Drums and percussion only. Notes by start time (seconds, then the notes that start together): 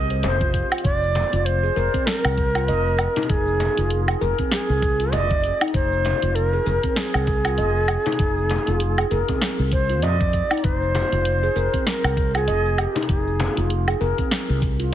0.10 closed hi-hat, cabasa
0.23 closed hi-hat, frame drum, cabasa
0.41 kick, cabasa
0.54 kick, closed hi-hat, cabasa
0.72 closed hi-hat, cabasa, low woodblock
0.78 closed hi-hat
0.85 kick, closed hi-hat, cabasa
1.03 cabasa
1.15 closed hi-hat, frame drum, cabasa
1.33 closed hi-hat, cabasa
1.46 closed hi-hat, cabasa
1.64 cabasa
1.77 cabasa
1.94 kick, closed hi-hat, cabasa
2.07 snare, closed hi-hat, cabasa
2.25 cabasa, low woodblock
2.37 kick, closed hi-hat, cabasa
2.55 closed hi-hat, cabasa, low woodblock
2.68 closed hi-hat, cabasa
2.86 cabasa
2.99 closed hi-hat, cabasa, low woodblock
3.16 closed hi-hat, frame drum, cabasa
3.23 closed hi-hat
3.30 kick, closed hi-hat, cabasa
3.47 cabasa
3.60 closed hi-hat, frame drum, cabasa
3.77 closed hi-hat, cabasa
3.90 closed hi-hat, cabasa
4.08 cabasa, low woodblock
4.21 cabasa
4.38 kick, closed hi-hat, cabasa
4.51 snare, closed hi-hat, cabasa
4.70 cabasa
4.82 kick, closed hi-hat, cabasa
5.00 closed hi-hat, cabasa
5.12 closed hi-hat, frame drum, cabasa
5.31 kick, cabasa
5.44 closed hi-hat, cabasa
5.61 closed hi-hat, cabasa, low woodblock
5.68 closed hi-hat
5.74 kick, closed hi-hat, cabasa
5.92 cabasa
6.05 closed hi-hat, frame drum, cabasa
6.22 closed hi-hat, cabasa
6.35 closed hi-hat, cabasa
6.54 cabasa
6.66 cabasa
6.83 kick, closed hi-hat, cabasa
6.96 snare, closed hi-hat, cabasa
7.14 cabasa, low woodblock
7.27 kick, closed hi-hat, cabasa
7.45 closed hi-hat, cabasa, low woodblock
7.58 closed hi-hat, cabasa
7.76 cabasa
7.88 closed hi-hat, cabasa, low woodblock
8.06 closed hi-hat, frame drum, cabasa
8.12 closed hi-hat
8.19 kick, closed hi-hat, cabasa
8.37 cabasa
8.50 closed hi-hat, frame drum, cabasa
8.67 closed hi-hat, cabasa
8.80 closed hi-hat, cabasa
8.98 cabasa, low woodblock
9.11 closed hi-hat, cabasa
9.28 kick, closed hi-hat, frame drum, cabasa
9.41 snare, closed hi-hat, cabasa
9.59 cabasa
9.72 kick, closed hi-hat, cabasa
9.89 closed hi-hat, cabasa
10.02 closed hi-hat, frame drum, cabasa
10.21 kick, cabasa
10.33 kick, closed hi-hat, cabasa
10.51 closed hi-hat, cabasa, low woodblock
10.57 closed hi-hat
10.64 kick, closed hi-hat, cabasa
10.82 cabasa
10.95 closed hi-hat, frame drum, cabasa
11.12 closed hi-hat, cabasa
11.25 closed hi-hat, cabasa
11.44 cabasa
11.57 cabasa
11.74 kick, closed hi-hat, cabasa
11.87 snare, closed hi-hat, cabasa
12.04 cabasa, low woodblock
12.17 kick, closed hi-hat, cabasa
12.35 closed hi-hat, cabasa, low woodblock
12.48 closed hi-hat, cabasa
12.66 cabasa
12.78 closed hi-hat, cabasa, low woodblock
12.96 closed hi-hat, frame drum, cabasa
13.02 closed hi-hat
13.09 kick, closed hi-hat, cabasa
13.27 cabasa
13.40 closed hi-hat, frame drum, cabasa
13.57 closed hi-hat, cabasa
13.70 closed hi-hat, cabasa
13.88 cabasa, low woodblock
14.01 cabasa
14.18 kick, closed hi-hat, cabasa
14.31 snare, closed hi-hat, cabasa
14.50 cabasa
14.62 kick, closed hi-hat, cabasa
14.80 closed hi-hat, cabasa